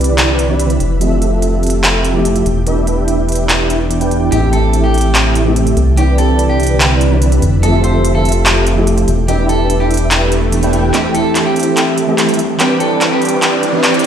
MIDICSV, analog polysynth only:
0, 0, Header, 1, 2, 480
1, 0, Start_track
1, 0, Key_signature, 0, "minor"
1, 0, Tempo, 413793
1, 1173, Time_signature, 4, 2, 24, 8
1, 16314, End_track
2, 0, Start_track
2, 0, Title_t, "Analog polysynth"
2, 0, Program_c, 0, 90
2, 0, Note_on_c, 0, 60, 92
2, 0, Note_on_c, 0, 64, 84
2, 0, Note_on_c, 0, 67, 88
2, 0, Note_on_c, 0, 71, 86
2, 0, Note_on_c, 0, 74, 102
2, 543, Note_off_c, 0, 60, 0
2, 543, Note_off_c, 0, 64, 0
2, 543, Note_off_c, 0, 71, 0
2, 543, Note_off_c, 0, 74, 0
2, 544, Note_off_c, 0, 67, 0
2, 574, Note_on_c, 0, 74, 92
2, 575, Note_on_c, 0, 60, 78
2, 575, Note_on_c, 0, 64, 73
2, 575, Note_on_c, 0, 67, 75
2, 575, Note_on_c, 0, 71, 74
2, 918, Note_off_c, 0, 74, 0
2, 919, Note_off_c, 0, 60, 0
2, 919, Note_off_c, 0, 64, 0
2, 919, Note_off_c, 0, 67, 0
2, 919, Note_off_c, 0, 71, 0
2, 1173, Note_on_c, 0, 60, 88
2, 1173, Note_on_c, 0, 67, 83
2, 1174, Note_on_c, 0, 65, 86
2, 1174, Note_on_c, 0, 69, 88
2, 1174, Note_on_c, 0, 76, 101
2, 2464, Note_off_c, 0, 60, 0
2, 2464, Note_off_c, 0, 67, 0
2, 2465, Note_off_c, 0, 65, 0
2, 2465, Note_off_c, 0, 69, 0
2, 2465, Note_off_c, 0, 76, 0
2, 2495, Note_on_c, 0, 69, 75
2, 2495, Note_on_c, 0, 76, 84
2, 2496, Note_on_c, 0, 60, 81
2, 2496, Note_on_c, 0, 65, 72
2, 2496, Note_on_c, 0, 67, 73
2, 2839, Note_off_c, 0, 60, 0
2, 2839, Note_off_c, 0, 65, 0
2, 2839, Note_off_c, 0, 67, 0
2, 2839, Note_off_c, 0, 69, 0
2, 2839, Note_off_c, 0, 76, 0
2, 3094, Note_on_c, 0, 62, 94
2, 3094, Note_on_c, 0, 64, 89
2, 3095, Note_on_c, 0, 67, 86
2, 3095, Note_on_c, 0, 71, 85
2, 3095, Note_on_c, 0, 76, 107
2, 4385, Note_off_c, 0, 62, 0
2, 4385, Note_off_c, 0, 64, 0
2, 4385, Note_off_c, 0, 67, 0
2, 4385, Note_off_c, 0, 71, 0
2, 4385, Note_off_c, 0, 76, 0
2, 4654, Note_on_c, 0, 79, 100
2, 4655, Note_on_c, 0, 62, 90
2, 4655, Note_on_c, 0, 64, 84
2, 4655, Note_on_c, 0, 67, 83
2, 4655, Note_on_c, 0, 71, 79
2, 4984, Note_off_c, 0, 79, 0
2, 4985, Note_off_c, 0, 62, 0
2, 4985, Note_off_c, 0, 64, 0
2, 4985, Note_off_c, 0, 67, 0
2, 4985, Note_off_c, 0, 71, 0
2, 5014, Note_on_c, 0, 67, 88
2, 5014, Note_on_c, 0, 69, 85
2, 5014, Note_on_c, 0, 76, 104
2, 5015, Note_on_c, 0, 60, 91
2, 5015, Note_on_c, 0, 64, 88
2, 6305, Note_off_c, 0, 60, 0
2, 6305, Note_off_c, 0, 67, 0
2, 6305, Note_off_c, 0, 69, 0
2, 6305, Note_off_c, 0, 76, 0
2, 6306, Note_off_c, 0, 64, 0
2, 6333, Note_on_c, 0, 64, 75
2, 6333, Note_on_c, 0, 67, 73
2, 6333, Note_on_c, 0, 76, 92
2, 6334, Note_on_c, 0, 60, 80
2, 6334, Note_on_c, 0, 69, 75
2, 6678, Note_off_c, 0, 60, 0
2, 6678, Note_off_c, 0, 64, 0
2, 6678, Note_off_c, 0, 67, 0
2, 6678, Note_off_c, 0, 76, 0
2, 6679, Note_off_c, 0, 69, 0
2, 6933, Note_on_c, 0, 74, 105
2, 6934, Note_on_c, 0, 60, 94
2, 6934, Note_on_c, 0, 64, 89
2, 6934, Note_on_c, 0, 67, 85
2, 6934, Note_on_c, 0, 71, 88
2, 8224, Note_off_c, 0, 74, 0
2, 8225, Note_off_c, 0, 60, 0
2, 8225, Note_off_c, 0, 64, 0
2, 8225, Note_off_c, 0, 67, 0
2, 8225, Note_off_c, 0, 71, 0
2, 8254, Note_on_c, 0, 60, 78
2, 8254, Note_on_c, 0, 67, 76
2, 8254, Note_on_c, 0, 71, 73
2, 8255, Note_on_c, 0, 64, 76
2, 8255, Note_on_c, 0, 74, 86
2, 8599, Note_off_c, 0, 60, 0
2, 8599, Note_off_c, 0, 64, 0
2, 8599, Note_off_c, 0, 67, 0
2, 8599, Note_off_c, 0, 71, 0
2, 8599, Note_off_c, 0, 74, 0
2, 8852, Note_on_c, 0, 76, 107
2, 8853, Note_on_c, 0, 65, 85
2, 8853, Note_on_c, 0, 67, 86
2, 8853, Note_on_c, 0, 69, 84
2, 8854, Note_on_c, 0, 60, 93
2, 10144, Note_off_c, 0, 65, 0
2, 10144, Note_off_c, 0, 67, 0
2, 10144, Note_off_c, 0, 69, 0
2, 10144, Note_off_c, 0, 76, 0
2, 10145, Note_off_c, 0, 60, 0
2, 10173, Note_on_c, 0, 69, 75
2, 10174, Note_on_c, 0, 60, 83
2, 10174, Note_on_c, 0, 65, 77
2, 10174, Note_on_c, 0, 67, 76
2, 10174, Note_on_c, 0, 76, 88
2, 10518, Note_off_c, 0, 65, 0
2, 10518, Note_off_c, 0, 69, 0
2, 10519, Note_off_c, 0, 60, 0
2, 10519, Note_off_c, 0, 67, 0
2, 10519, Note_off_c, 0, 76, 0
2, 10772, Note_on_c, 0, 64, 87
2, 10772, Note_on_c, 0, 67, 90
2, 10772, Note_on_c, 0, 71, 86
2, 10773, Note_on_c, 0, 62, 98
2, 10773, Note_on_c, 0, 76, 105
2, 12064, Note_off_c, 0, 62, 0
2, 12064, Note_off_c, 0, 64, 0
2, 12064, Note_off_c, 0, 67, 0
2, 12064, Note_off_c, 0, 71, 0
2, 12064, Note_off_c, 0, 76, 0
2, 12332, Note_on_c, 0, 62, 88
2, 12332, Note_on_c, 0, 64, 82
2, 12332, Note_on_c, 0, 67, 83
2, 12333, Note_on_c, 0, 71, 85
2, 12333, Note_on_c, 0, 79, 102
2, 12663, Note_off_c, 0, 62, 0
2, 12663, Note_off_c, 0, 64, 0
2, 12663, Note_off_c, 0, 67, 0
2, 12663, Note_off_c, 0, 79, 0
2, 12664, Note_off_c, 0, 71, 0
2, 12689, Note_on_c, 0, 60, 95
2, 12690, Note_on_c, 0, 64, 84
2, 12690, Note_on_c, 0, 67, 85
2, 12690, Note_on_c, 0, 76, 103
2, 12691, Note_on_c, 0, 69, 87
2, 13983, Note_off_c, 0, 60, 0
2, 13983, Note_off_c, 0, 64, 0
2, 13983, Note_off_c, 0, 67, 0
2, 13983, Note_off_c, 0, 69, 0
2, 13983, Note_off_c, 0, 76, 0
2, 14013, Note_on_c, 0, 60, 85
2, 14013, Note_on_c, 0, 64, 73
2, 14013, Note_on_c, 0, 67, 76
2, 14013, Note_on_c, 0, 69, 76
2, 14013, Note_on_c, 0, 76, 89
2, 14358, Note_off_c, 0, 60, 0
2, 14358, Note_off_c, 0, 64, 0
2, 14358, Note_off_c, 0, 67, 0
2, 14358, Note_off_c, 0, 69, 0
2, 14358, Note_off_c, 0, 76, 0
2, 14610, Note_on_c, 0, 60, 93
2, 14610, Note_on_c, 0, 74, 105
2, 14611, Note_on_c, 0, 64, 86
2, 14611, Note_on_c, 0, 67, 89
2, 14611, Note_on_c, 0, 71, 90
2, 15903, Note_off_c, 0, 60, 0
2, 15903, Note_off_c, 0, 64, 0
2, 15903, Note_off_c, 0, 67, 0
2, 15903, Note_off_c, 0, 71, 0
2, 15903, Note_off_c, 0, 74, 0
2, 15933, Note_on_c, 0, 60, 87
2, 15933, Note_on_c, 0, 64, 78
2, 15933, Note_on_c, 0, 67, 77
2, 15933, Note_on_c, 0, 71, 77
2, 15933, Note_on_c, 0, 74, 92
2, 16278, Note_off_c, 0, 60, 0
2, 16278, Note_off_c, 0, 64, 0
2, 16278, Note_off_c, 0, 67, 0
2, 16278, Note_off_c, 0, 71, 0
2, 16278, Note_off_c, 0, 74, 0
2, 16314, End_track
0, 0, End_of_file